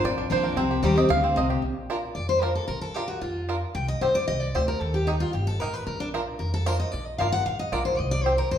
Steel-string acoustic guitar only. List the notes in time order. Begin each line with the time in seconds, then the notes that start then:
0.05 F2
0.30 F3 A#3 D4 F4
0.57 C3
0.83 D#3 G3 C4 G4
0.95 C4 G4
1.09 D3
1.36 C3
2.15 D5
2.29 C5
2.42 A#4
2.55 A4
2.68 A#4
2.81 A4
2.94 G4
3.08 F#4
3.21 F4
3.75 G5
3.88 D#5
4.01 C5
4.15 D5
4.28 D#5
4.41 D5
4.55 C5
4.68 A#4
4.81 A4
4.94 G4
5.07 D#4
5.20 F4
5.33 G4
5.47 A4
5.60 A#4
5.74 B4
5.87 A#4
6.00 D4
6.39 A#4
6.54 A4
6.66 C5
6.80 D#5
6.92 D5
7.06 D#5
7.18 F5
7.32 F#5
7.46 F5
7.59 D#5
7.72 D5
7.85 C5
7.99 D#5
8.11 D5
8.24 C5
8.38 A#4
8.51 C5